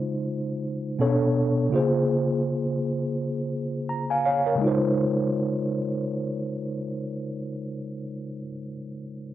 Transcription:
tine electric piano
Already playing: C#3 G#3 D#4 F4 C5
0.99 B2 B3 C#4 A4 C#5
1.07 D4
1.70 C#3 A#3 F4
1.74 G#4 C5
3.89 A#5
4.10 F5 G#5
4.25 C#5 F5
4.46 A#4 C#5
4.55 C#3 G#3
4.61 D#4 F4
4.67 C5

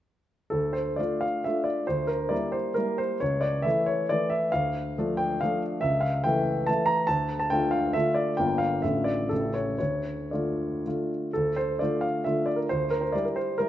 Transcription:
grand piano
0.50 D2 A4
0.73 C5
0.96 A3 D4 F4 D5
1.21 F5
1.44 A3 D4 F4 E5
1.64 D5
1.87 D2 C5
2.07 A#4
2.29 G3 A#3 E4 D5
2.52 C5
2.74 G3 A#3 E4 A#4
2.98 C5
3.20 C#2 C#5
3.41 D5
3.62 E3 A3 E4 E5
3.86 C#5
4.09 E3 A3 E4 D5
4.30 E5
4.52 D2 F5
4.98 F3 A3 D4
5.17 G5
5.41 F3 A3 D4 F5
5.81 C#2 E5
6.01 F5
6.24 E3 A3 E4 G5
6.67 E3 A3 E4 A5
6.86 A#5
7.07 D2 A5
7.39 A5
7.50 D3 A3 F4 G5
7.71 F5
7.93 D3 A3 F4 E5
8.14 D5
8.37 G1 D3 A#3 F4 G5
8.58 F5
8.82 A1 D3 A3 F4 E5
9.04 D5
9.29 A1 C#3 A3 E4 A4
9.54 C#5
9.78 D2 C#5
10.31 D3 A3 F4 D5
10.86 D3 A3 F4
11.33 D2 A4
11.56 C5
11.79 D3 A3 F4 D5
12.01 F5
12.24 D3 A3 F4 E5
12.46 D5
12.56 A#4
12.69 D2 C5
12.90 A#4
13.01 C5
13.12 G3 E4 D5
13.25 A#4
13.36 C5
13.58 G3 E4 A#4

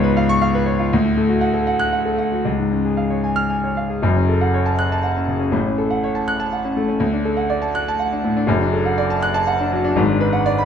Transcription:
grand piano
Already playing: C#2 G#2 B3 F4 C#5
0.04 B4
0.17 F5
0.29 C#6
0.41 F5
0.55 B4
0.66 C#5
0.79 F4
0.93 D2
1.05 A2
1.17 A3
1.29 F#4
1.41 F#5
1.53 A4
1.67 F#5
1.79 F#6
1.93 F#5
2.05 A4
2.18 F#5
2.32 F#4
2.45 C#2
2.58 G#2
2.71 C#4
2.85 G#4
2.97 F5
3.10 C#5
3.24 G#5
3.36 F6
3.50 G#5
3.64 C#5
3.77 F5
3.89 G#4
4.03 F#1 F#2
4.16 C#4
4.29 A4
4.41 F#5
4.54 C#5
4.66 A5
4.79 F#6
4.92 A5
5.03 F#5
5.16 C#4
5.28 C#3
5.39 C#4
5.51 A1 A2
5.65 C#4
5.78 A4
5.91 F#5
6.04 C#5
6.15 A5
6.28 F#6
6.40 A5
6.53 F#5
6.64 C#4
6.77 A3
6.88 C#4
7.00 D2
7.13 D4
7.25 A4
7.37 F#5
7.50 D5
7.62 A5
7.75 F#6
7.88 A5
8.00 F#5
8.12 D4
8.24 A2
8.37 D4
8.47 F#1 F#2
8.61 D4
8.73 A4
8.86 F#5
8.98 D5
9.10 A5
9.22 F#6
9.34 A5
9.47 F#5
9.60 D4
9.72 F#3
9.84 D4
9.96 G#1 G#2
10.10 D4
10.21 B4
10.33 F#5
10.46 D5
10.58 B5

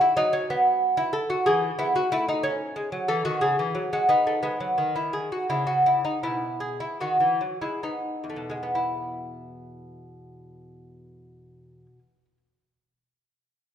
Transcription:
lute
0.01 E4
0.17 F#3 D#4
0.33 C#4
0.50 B3
0.97 E4
1.13 A4
1.30 F#4
1.46 E3 G#4
1.79 B3 E4
1.96 F#4
2.12 A3 E4
2.29 D#4
2.43 C#4
2.76 G#3
2.92 F#3
3.08 E3 A4
3.25 D#3 F#4
3.41 C#3 G#4
3.59 E3
3.75 F#3
3.93 G#3 F#4
4.09 B3 D#4
4.27 A3
4.43 G#3 B3
4.60 F#3
4.78 D#3
4.96 E4
5.13 G#4
5.32 F#4
5.50 C#3 E4
5.67 F#4
5.86 E4
6.05 D#4
6.23 B2 E4
6.60 G#4
6.80 E4
7.00 D#3 F#4
7.20 E3
7.41 F#3
7.62 G#3 E4
7.83 B3 D#4
8.24 E2
8.30 A3
8.36 B2
8.50 G#3
8.63 B3
8.75 E4

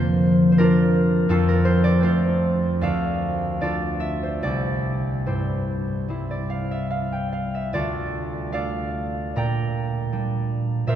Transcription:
harp
Already playing: F2 D3 F3 A#3 F4 A#4 C5 D5 F5
0.52 C5
0.58 D4 F4 A#4
1.29 F2 C4 F4 A4
1.49 A#4
1.65 C5
1.84 D5
2.01 A3 C4 F4 C5
2.06 A4
2.81 D2 A4 D5 F5
3.61 A3 D4 F4 A4 D5
4.00 E5
4.23 C5
4.42 C2 G4 D5
5.26 G2 E4 G4 C5
6.08 G3 C4 E4
6.31 D5
6.50 F5
6.71 E5
6.90 F5
7.12 G5
7.33 F5
7.55 E5
7.73 D2 F4 A4 D5
8.52 A3 D4 A4 D5 F5
9.36 A#2 D5 G5 A#5
10.12 G3 D4
10.87 A#2 A#4 C5 E5

